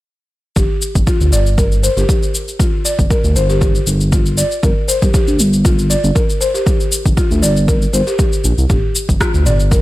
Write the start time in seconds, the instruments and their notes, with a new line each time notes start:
0.56 analog synth bass G1, marimba G4, kick, cabasa
0.82 cabasa
0.95 analog synth bass G1, kick, cabasa
1.07 marimba F4, kick, cabasa
1.21 analog synth bass D2, cabasa
1.32 analog synth bass G1, marimba D5, cabasa
1.46 cabasa
1.58 marimba A#4, kick, cabasa
1.72 cabasa
1.83 marimba C5, cabasa
1.97 analog synth bass G1, marimba G4, cabasa
2.09 marimba G4, kick, cabasa
2.23 cabasa
2.35 cabasa
2.48 cabasa
2.59 marimba F4, kick, cabasa
2.85 marimba D5, cabasa
2.99 analog synth bass G1, kick, cabasa
3.10 marimba A#4, kick, cabasa
3.24 analog synth bass D2, cabasa
3.36 analog synth bass G1, marimba C5, cabasa
3.50 marimba G4, cabasa
3.61 marimba G4, kick, cabasa
3.75 cabasa
3.87 analog synth bass G1, cabasa
4.01 cabasa
4.12 marimba F4, kick, cabasa
4.26 cabasa
4.37 marimba D5, cabasa
4.51 cabasa
4.63 analog synth bass G1, marimba A#4, kick, cabasa
4.88 marimba C5, cabasa
5.02 analog synth bass G1, marimba G4, kick, cabasa
5.14 marimba G4, kick, cabasa
5.28 analog synth bass D2, cabasa
5.39 analog synth bass G1, cabasa
5.53 cabasa
5.65 marimba F4, kick, cabasa
5.79 cabasa
5.90 marimba D5, cabasa
6.04 analog synth bass G1, cabasa
6.15 marimba A#4, kick, cabasa
6.30 cabasa
6.41 marimba C5, cabasa
6.54 marimba G4, cabasa
6.66 marimba G4, kick, cabasa
6.80 cabasa
6.92 cabasa
7.06 analog synth bass G1, kick, cabasa
7.17 marimba F4, kick, cabasa
7.31 analog synth bass D2, cabasa
7.42 analog synth bass G1, marimba D5, cabasa
7.57 cabasa
7.68 marimba A#4, kick, cabasa
7.82 cabasa
7.93 analog synth bass G1, marimba C5, cabasa
8.07 marimba G4, cabasa
8.19 marimba G4, kick, cabasa
8.33 cabasa
8.44 analog synth bass A#1, cabasa
8.58 analog synth bass C2, cabasa
8.70 analog synth bass G1, marimba G4, kick, mid tom, cabasa
8.95 cabasa
9.09 analog synth bass G1, kick, cabasa
9.20 marimba F4, kick, cross-stick, cabasa
9.34 analog synth bass D2, cabasa
9.46 analog synth bass G1, marimba D5, mid tom, cabasa
9.60 cabasa
9.71 marimba A#4, kick, cabasa